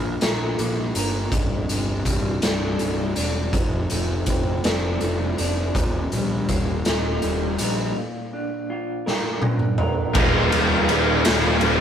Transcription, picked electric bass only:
0.00 0.16 A#1 medium
0.22 0.53 A#1 medium
0.59 0.90 A#1 medium
0.96 1.27 G1 medium
1.32 1.64 C1 medium
1.70 2.01 G1 medium
2.05 2.37 C1 medium
2.43 2.75 C1 medium
2.80 3.12 C1 medium
3.17 3.49 E1 medium
3.54 3.85 F1 medium
3.91 4.23 F1 medium
4.27 4.59 F1 medium
4.65 4.97 F1 medium
5.01 5.33 F1 medium
5.39 5.70 F1 medium
5.75 6.07 D#1 medium
6.13 6.44 A#1 medium
6.49 6.81 D#1 medium
6.87 7.18 D#1 medium
7.24 7.55 D#1 medium
7.61 7.92 A#1 medium
10.16 10.49 D#1 loud
10.53 10.86 D#1 medium
10.90 11.23 D#1 medium
11.26 11.59 D#1 medium
11.62 11.80 D#1 medium

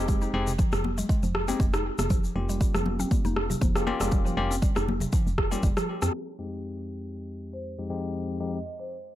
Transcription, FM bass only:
0.00 0.27 F1 medium
0.34 0.65 F1 loud
0.73 1.03 F1 loud
1.23 1.53 F1 medium
1.60 1.91 F1 medium
1.99 2.29 F1 medium
2.36 2.66 F1 loud
2.75 3.04 F1 medium
3.25 3.55 F1 medium
3.62 3.92 F1 medium
4.01 4.31 F1 medium
4.37 4.68 F1 loud
4.76 5.06 F1 loud
5.27 5.57 F1 medium
5.63 5.72 F1 loud
6.02 6.10 F2 medium

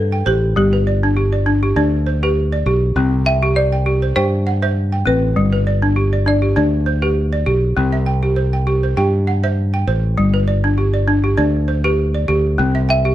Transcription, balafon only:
0.00 0.12 C5 medium
0.00 0.26 E5 medium
0.00 0.12 F#5 medium
0.12 0.56 G5 medium
0.26 0.56 C5 medium
0.56 0.86 G3 medium
0.73 1.16 B4 medium
0.87 1.31 D5 medium
1.03 1.33 D4 medium
1.17 1.62 G4 medium
1.33 1.75 D5 medium
1.46 1.75 D4 medium
1.63 2.06 G4 medium
1.76 2.06 D4 medium
1.76 2.23 D5 medium
2.06 2.53 C5 medium
2.23 2.53 G4 medium
2.23 2.67 B4 medium
2.52 2.96 D5 medium
2.66 2.96 G4 medium
2.96 3.26 C4 medium
3.26 3.71 G5 medium
3.43 3.73 G4 medium
3.56 4.01 C5 medium
3.73 4.15 G5 medium
3.86 4.15 G4 medium
4.02 4.46 C5 medium
4.16 4.46 G4 medium
4.16 4.63 G5 medium
4.47 4.93 F#5 medium
4.62 4.93 C5 medium
4.62 5.06 E5 medium
4.92 5.36 G5 medium
5.06 5.36 C4 medium
5.36 5.66 G3 medium
5.53 5.97 B4 medium
5.67 6.12 D5 medium
5.82 6.13 D4 medium
5.96 6.41 G4 medium
6.13 6.55 D5 medium
6.26 6.55 D4 medium
6.42 6.86 G4 medium
6.56 6.87 D4 medium
6.56 7.03 D5 medium
6.86 7.33 C5 medium
7.02 7.33 G4 medium
7.02 7.47 B4 medium
7.33 7.77 D5 medium
7.46 7.77 G4 medium
7.77 8.07 C4 medium
7.93 8.37 E5 medium
8.06 8.52 G5 medium
8.23 8.53 G4 medium
8.36 8.82 C5 medium
8.53 8.96 G5 medium
8.67 8.96 G4 medium
8.83 9.27 C5 medium
8.97 9.27 G4 medium
8.97 9.44 G5 medium
9.27 9.74 F#5 medium
9.44 9.74 C5 medium
9.44 9.88 E5 medium
9.74 10.18 G5 medium
9.88 10.18 C5 medium
10.18 10.48 G3 medium
10.34 10.78 B4 medium
10.48 10.92 D5 medium
10.64 10.94 D4 medium
10.78 11.23 G4 medium
10.94 11.36 D5 medium
11.08 11.36 D4 medium
11.24 11.68 G4 medium
11.37 11.68 D4 medium
11.37 11.84 D5 medium
11.68 12.15 C5 medium
11.84 12.15 G4 medium
11.84 12.29 B4 medium
12.14 12.59 D5 medium
12.28 12.59 G4 medium
12.58 12.89 C4 medium
12.75 13.15 E5 medium
12.89 13.15 G5 medium
13.05 13.15 G4 medium

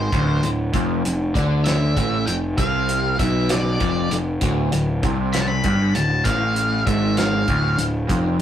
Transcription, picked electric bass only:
0.12 0.41 D1 medium
0.43 0.72 D1 medium
0.74 1.02 F1 medium
1.05 1.33 F1 medium
1.35 1.93 D2 medium
1.97 2.25 A1 medium
2.27 2.56 F1 medium
2.58 3.15 C2 medium
3.19 3.76 B1 medium
3.81 4.09 F1 medium
4.11 4.39 F1 medium
4.42 4.70 D1 medium
4.72 5.01 D1 medium
5.03 5.60 C2 medium
5.65 5.93 G1 medium
5.95 6.23 D1 medium
6.26 6.83 A1 medium
6.87 7.44 G#1 medium
7.48 7.77 D1 medium
7.78 8.07 D1 medium
8.09 8.38 F1 medium

